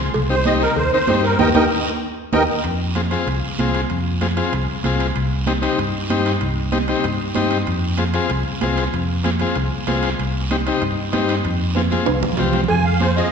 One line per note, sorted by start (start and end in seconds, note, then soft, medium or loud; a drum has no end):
0.14 0.65 C2 loud
0.14 cowbell loud
0.14 long guiro medium
0.29 0.35 C4 medium
0.29 0.35 D#4 medium
0.29 0.36 G4 medium
0.29 0.45 C5 medium
0.45 0.62 C4 medium
0.45 0.63 D#4 medium
0.45 0.63 G4 medium
0.45 0.53 D#5 loud
0.45 cowbell medium
0.45 high conga medium
0.45 short guiro medium
0.61 0.76 A#4 medium
0.61 short guiro medium
0.76 0.89 D#2 medium
0.76 0.91 C5 medium
0.76 cowbell medium
0.76 long guiro medium
0.93 0.98 C4 medium
0.93 0.99 D#4 medium
0.93 0.99 A#4 medium
0.93 1.22 C5 medium
1.07 1.33 G2 medium
1.07 1.25 C4 medium
1.07 1.25 D#4 medium
1.07 1.25 G4 medium
1.07 cowbell medium
1.07 high conga medium
1.07 low timbale medium
1.07 short guiro medium
1.24 1.38 A#4 medium
1.24 short guiro medium
1.39 1.51 D#2 medium
1.39 1.50 A#3 loud
1.39 1.50 D#4 loud
1.39 1.49 G4 loud
1.39 1.49 A#4 medium
1.39 1.49 D#5 medium
1.39 1.49 G5 medium
1.39 high conga medium
1.39 high timbale medium
1.39 long guiro loud
1.54 1.67 D#2 medium
1.54 1.65 A#3 medium
1.54 1.65 D#4 loud
1.54 1.65 G4 loud
1.54 1.65 A#4 medium
1.54 1.65 D#5 medium
1.54 1.65 G5 medium
1.54 high conga loud
1.54 high timbale loud
1.54 long guiro loud
2.33 2.45 D#2 medium
2.33 2.43 A#3 medium
2.33 2.43 D#4 medium
2.33 2.43 G4 medium
2.33 2.43 A#4 medium
2.33 2.43 D#5 medium
2.33 2.44 G5 medium
2.33 high conga loud
2.33 high timbale loud
2.33 long guiro loud
2.64 3.15 F2 medium
2.64 high timbale medium
2.64 long guiro medium
2.95 3.01 C4 medium
2.95 3.01 F4 medium
2.95 3.02 G#4 medium
2.95 high conga medium
2.95 high timbale medium
2.95 short guiro medium
3.11 3.28 C4 medium
3.11 3.28 F4 medium
3.11 3.28 G#4 medium
3.11 high timbale medium
3.11 short guiro medium
3.27 3.39 C2 medium
3.27 high timbale medium
3.27 long guiro medium
3.59 3.84 C2 medium
3.59 3.81 C4 medium
3.59 3.81 F4 medium
3.59 3.81 G#4 medium
3.59 high conga medium
3.59 high timbale medium
3.59 short guiro medium
3.75 high timbale medium
3.75 short guiro medium
3.90 4.40 F2 medium
3.90 high timbale medium
3.90 long guiro medium
4.21 4.27 C4 medium
4.21 4.27 F4 medium
4.21 4.27 G#4 medium
4.21 high conga medium
4.21 high timbale medium
4.21 short guiro medium
4.37 4.54 C4 medium
4.37 4.54 F4 medium
4.37 4.54 G#4 medium
4.37 high timbale medium
4.37 short guiro medium
4.53 4.65 C2 medium
4.53 high timbale medium
4.53 long guiro medium
4.84 5.10 C2 medium
4.84 5.07 C4 medium
4.84 5.07 F4 medium
4.84 5.07 G#4 medium
4.84 high conga medium
4.84 high timbale medium
4.84 short guiro medium
5.00 high timbale medium
5.00 short guiro medium
5.16 5.66 C2 medium
5.16 high timbale medium
5.16 long guiro medium
5.47 5.53 C4 medium
5.47 5.53 D#4 medium
5.47 5.53 G4 medium
5.47 high conga medium
5.47 high timbale medium
5.47 short guiro medium
5.62 5.79 C4 medium
5.62 5.79 D#4 medium
5.62 5.79 G4 medium
5.62 high timbale medium
5.62 short guiro medium
5.79 5.91 G2 medium
5.79 high timbale medium
5.79 long guiro medium
6.10 6.35 G2 medium
6.10 6.32 C4 medium
6.10 6.32 D#4 medium
6.10 6.32 G4 medium
6.10 high conga medium
6.10 high timbale medium
6.10 short guiro medium
6.26 high timbale medium
6.26 short guiro medium
6.41 6.92 C2 medium
6.41 high timbale medium
6.41 long guiro medium
6.72 6.78 C4 medium
6.72 6.78 D#4 medium
6.72 6.78 G4 medium
6.72 high conga medium
6.72 high timbale medium
6.72 short guiro medium
6.88 7.05 C4 medium
6.88 7.06 D#4 medium
6.88 7.06 G4 medium
6.88 high timbale medium
6.88 short guiro medium
7.04 7.17 G2 medium
7.04 high timbale medium
7.04 long guiro medium
7.35 7.61 G2 medium
7.35 7.58 C4 medium
7.35 7.58 D#4 medium
7.35 7.58 G4 medium
7.35 high conga medium
7.35 high timbale medium
7.35 low timbale medium
7.35 short guiro medium
7.51 high timbale medium
7.51 short guiro medium
7.67 8.18 F2 medium
7.67 high timbale medium
7.67 long guiro medium
7.97 8.04 C4 medium
7.97 8.04 F4 medium
7.97 8.04 G#4 medium
7.97 high conga medium
7.97 high timbale medium
7.97 short guiro medium
8.14 8.31 C4 medium
8.14 8.31 F4 medium
8.14 8.31 G#4 medium
8.14 high timbale medium
8.14 short guiro medium
8.30 8.43 C2 medium
8.30 high timbale medium
8.30 long guiro medium
8.61 8.87 C2 medium
8.61 8.84 C4 medium
8.61 8.84 F4 medium
8.61 8.84 G#4 medium
8.61 high conga medium
8.61 high timbale medium
8.61 low timbale medium
8.61 short guiro medium
8.77 high timbale medium
8.77 short guiro medium
8.93 9.43 F2 medium
8.93 high timbale medium
8.93 long guiro medium
9.24 9.30 C4 medium
9.24 9.30 F4 medium
9.24 9.30 G#4 medium
9.24 high conga medium
9.24 high timbale medium
9.24 short guiro medium
9.40 9.57 C4 medium
9.40 9.57 F4 medium
9.40 9.57 G#4 medium
9.40 high conga medium
9.40 high timbale medium
9.40 short guiro medium
9.55 9.69 C2 medium
9.55 high timbale medium
9.55 long guiro medium
9.87 10.13 C2 medium
9.87 10.10 C4 medium
9.87 10.10 F4 medium
9.87 10.10 G#4 medium
9.87 high conga medium
9.87 high timbale medium
9.87 low timbale medium
9.87 short guiro medium
10.03 high timbale medium
10.03 short guiro medium
10.19 10.69 C2 medium
10.19 high timbale medium
10.19 long guiro medium
10.51 10.56 C4 medium
10.51 10.56 D#4 medium
10.51 10.57 G4 loud
10.51 high conga medium
10.51 high timbale medium
10.51 short guiro medium
10.66 10.83 C4 medium
10.66 10.83 D#4 medium
10.66 10.84 G4 medium
10.66 high timbale medium
10.66 short guiro medium
10.82 10.94 G2 loud
10.82 high timbale medium
10.82 long guiro medium
11.12 11.39 G2 medium
11.12 11.35 C4 medium
11.12 11.35 D#4 medium
11.12 11.35 G4 medium
11.12 high conga medium
11.12 high timbale medium
11.12 low timbale medium
11.12 short guiro medium
11.29 high timbale medium
11.29 short guiro medium
11.44 11.95 F2 medium
11.44 high timbale medium
11.44 long guiro medium
11.75 11.81 C4 medium
11.75 11.82 F4 medium
11.75 11.82 G#4 medium
11.75 high conga medium
11.75 high timbale medium
11.75 short guiro medium
11.90 12.08 C4 medium
11.90 12.08 F4 medium
11.90 12.09 G#4 medium
11.90 high conga medium
11.90 short guiro medium
12.06 12.20 C2 medium
12.06 high timbale medium
12.06 long guiro medium
12.22 low conga loud
12.22 low timbale medium
12.33 low conga medium
12.37 12.64 C2 medium
12.37 12.61 C4 medium
12.37 12.61 F4 medium
12.37 12.61 G4 medium
12.37 low timbale medium
12.37 short guiro medium
12.43 low conga medium
12.53 low conga medium
12.53 low timbale medium
12.53 short guiro medium
12.64 low conga medium
12.68 13.20 F2 medium
12.68 12.85 G#5 medium
12.68 cowbell loud
12.68 long guiro medium
12.85 13.01 F5 medium
13.00 13.07 C4 medium
13.00 13.07 F4 medium
13.00 13.07 G#4 medium
13.00 13.16 C5 medium
13.00 cowbell medium
13.00 high conga medium
13.00 short guiro medium
13.17 13.28 C4 medium
13.17 13.28 F4 medium
13.17 13.29 G#4 medium
13.17 13.32 D#5 medium
13.17 short guiro medium